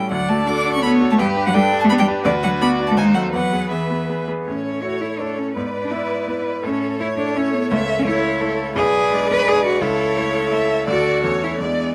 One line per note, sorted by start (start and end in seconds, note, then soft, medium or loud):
0.00 0.13 A2 medium
0.00 0.13 G3 medium
0.00 0.14 C#4 soft
0.00 0.14 E4 soft
0.00 0.10 A4 soft
0.00 0.10 G5 medium
0.11 0.29 D2 medium
0.11 0.31 F#3 medium
0.11 0.84 D5 medium
0.11 0.30 F#5 medium
0.29 0.47 A3 medium
0.29 0.46 D4 soft
0.29 0.46 F#4 soft
0.29 0.46 A4 soft
0.29 0.49 A5 medium
0.47 0.63 D4 medium
0.47 0.74 D4 medium
0.47 0.64 F#4 medium
0.47 1.15 A4 medium
0.47 0.64 A4 medium
0.47 0.73 D6 medium
0.65 0.81 D4 medium
0.65 0.81 F#4 soft
0.65 0.82 A4 medium
0.73 0.83 C#4 medium
0.73 0.82 C#6 medium
0.82 1.10 B3 loud
0.82 0.99 D4 soft
0.82 1.00 F#4 soft
0.82 1.00 A4 medium
0.82 1.20 C#5 medium
0.82 0.90 B5 medium
1.01 1.17 D4 medium
1.01 1.17 F#4 medium
1.01 1.17 A4 medium
1.10 1.15 A3 medium
1.10 1.14 A5 medium
1.18 1.36 G2 medium
1.18 1.28 G3 medium
1.18 1.54 G4 medium
1.18 1.56 B4 medium
1.18 1.27 G5 medium
1.36 1.52 D4 medium
1.36 1.52 G4 medium
1.36 1.53 B4 medium
1.46 1.50 F#3 loud
1.46 1.56 F#5 medium
1.54 1.63 G3 loud
1.54 1.70 D4 medium
1.54 2.24 D4 medium
1.54 1.70 G4 medium
1.54 1.88 A4 medium
1.54 1.70 B4 medium
1.54 1.80 G5 medium
1.72 1.88 D4 medium
1.72 1.88 G4 medium
1.72 1.89 B4 medium
1.80 1.84 A5 medium
1.84 1.87 A3 loud
1.84 2.26 G4 medium
1.89 1.95 B3 loud
1.89 2.06 D4 medium
1.89 2.06 G4 medium
1.89 2.06 B4 medium
1.89 1.93 B5 medium
1.98 2.08 G3 medium
1.98 2.06 G5 medium
2.08 2.24 D4 medium
2.08 2.24 G4 medium
2.08 2.24 B4 medium
2.24 2.42 D2 medium
2.24 2.33 D3 loud
2.24 2.99 F#4 medium
2.24 2.63 B4 medium
2.24 2.32 D5 medium
2.43 2.51 F#3 medium
2.43 2.59 D4 medium
2.43 2.60 F#4 medium
2.43 2.60 B4 medium
2.43 2.50 F#5 medium
2.61 2.69 B3 loud
2.61 2.77 D4 medium
2.61 2.77 F#4 medium
2.61 2.78 B4 medium
2.61 2.99 D5 medium
2.61 2.69 B5 medium
2.79 2.95 D4 medium
2.79 2.95 F#4 soft
2.79 2.96 B4 medium
2.87 2.91 A5 medium
2.91 2.94 A3 medium
2.97 3.15 D#2 medium
2.97 3.17 G#3 medium
2.97 3.36 D#4 medium
2.97 3.33 C5 medium
2.97 3.04 G#5 medium
3.14 3.33 F#3 medium
3.14 3.32 C4 soft
3.14 3.32 F#4 soft
3.14 3.32 A4 soft
3.14 3.22 F#5 medium
3.34 3.52 E2 medium
3.34 3.72 F#3 medium
3.34 4.28 B3 medium
3.34 4.26 B4 soft
3.34 3.70 F#5 medium
3.53 3.69 B3 soft
3.53 3.70 G#4 soft
3.53 3.70 B4 soft
3.71 4.28 E3 medium
3.71 3.88 B3 soft
3.71 3.88 G#4 soft
3.71 3.89 B4 soft
3.71 4.26 E5 medium
3.91 4.07 B3 soft
3.91 4.08 G#4 soft
3.91 4.08 B4 soft
4.09 4.26 B3 soft
4.09 4.26 G#4 soft
4.09 4.27 B4 soft
4.28 4.45 B3 soft
4.28 4.45 G#4 soft
4.28 4.45 B4 soft
4.46 4.83 A2 soft
4.46 4.84 C#4 medium
4.46 5.52 A4 soft
4.46 5.20 C#5 medium
4.46 5.52 C#5 soft
4.82 5.17 A3 soft
4.82 5.17 E4 soft
4.82 5.03 F#4 medium
4.82 5.17 C#5 soft
5.01 5.21 E4 medium
5.19 5.53 A3 soft
5.19 5.40 D4 medium
5.19 5.53 E4 soft
5.19 5.54 A4 soft
5.19 5.53 C#5 soft
5.38 5.56 C#4 medium
5.55 5.91 G#2 soft
5.55 5.64 B3 medium
5.55 6.26 B4 medium
5.55 6.60 B4 soft
5.55 6.60 D5 soft
5.85 5.93 D4 medium
5.91 6.24 B3 soft
5.91 6.45 E4 medium
5.91 6.24 E4 soft
5.91 6.24 D5 soft
6.28 6.60 B3 soft
6.28 6.60 E4 soft
6.28 6.66 B4 medium
6.28 6.60 D5 soft
6.63 6.98 A2 medium
6.63 6.97 C#4 medium
6.63 8.72 A4 medium
6.63 7.01 A4 medium
6.63 8.72 C#5 medium
7.00 7.32 A3 soft
7.00 7.07 E4 medium
7.00 7.32 E4 soft
7.00 7.71 C#5 medium
7.00 7.32 C#5 medium
7.19 7.38 D4 medium
7.36 7.68 A3 soft
7.36 7.55 C#4 medium
7.36 7.68 E4 soft
7.36 7.68 C#5 soft
7.54 7.70 B3 medium
7.71 8.05 C#2 medium
7.71 7.79 A3 medium
7.71 8.05 E5 medium
7.99 8.02 C#4 medium
8.06 8.38 A3 medium
8.06 8.58 E4 loud
8.06 8.38 E4 medium
8.06 8.42 C#5 medium
8.06 8.38 C#5 medium
8.40 8.72 A3 soft
8.40 8.73 E4 medium
8.40 8.76 A4 medium
8.40 8.73 C#5 medium
8.76 9.10 B1 medium
8.76 9.84 G#4 medium
8.76 9.26 G#4 loud
8.76 9.80 B4 medium
8.76 9.84 D5 medium
9.11 9.43 G#3 medium
9.11 9.44 D4 medium
9.11 9.44 D5 medium
9.31 9.50 B4 loud
9.47 9.78 G#3 soft
9.47 9.78 D4 medium
9.47 9.65 G#4 loud
9.47 9.79 D5 medium
9.66 9.85 F#4 medium
9.81 10.16 C#2 medium
9.81 10.71 E4 medium
9.81 10.19 A4 medium
9.81 11.62 A4 medium
9.81 10.88 C#5 medium
10.17 10.49 A3 medium
10.17 10.49 E4 soft
10.17 10.49 A4 medium
10.17 10.50 C#5 medium
10.50 10.85 A3 soft
10.50 10.85 E4 soft
10.50 10.85 A4 medium
10.50 10.87 E5 medium
10.87 11.23 D2 medium
10.87 11.20 A3 medium
10.87 11.21 D4 soft
10.87 11.45 F#4 medium
10.87 11.21 A4 soft
10.87 11.23 D5 medium
11.24 11.59 E2 medium
11.24 11.57 A3 soft
11.24 11.57 C#4 soft
11.24 11.58 A4 soft
11.24 11.59 C#5 medium
11.24 11.62 C#5 medium
11.44 11.61 E4 medium
11.59 11.95 E2 soft
11.59 11.95 G#3 soft
11.59 11.95 B3 medium
11.59 11.95 D4 soft
11.59 11.95 E4 soft
11.59 11.95 G#4 medium
11.59 11.95 D5 medium